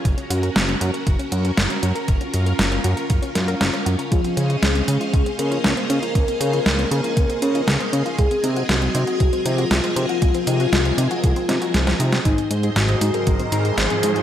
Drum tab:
HH |xxxxxxxxxxxxxxxx|xxxxxxxxxxxxxxxx|xxxxxxxxxxxxxxxx|xxxxxxxxxxxxxxxx|
SD |----o-------o---|----o-----o-o---|----o-------o---|----o-------o---|
BD |o-------o-------|o-------o-------|o-------o-------|o-------o-------|

HH |xxxxxxxxxxxxxxxx|xxxxxxxxxxxxxxxx|xxxxxxxxxxxxxxxx|
SD |----o-------o---|----o-----o-oo-o|----o-------o---|
BD |o-------o-------|o-------o-------|o-------o-------|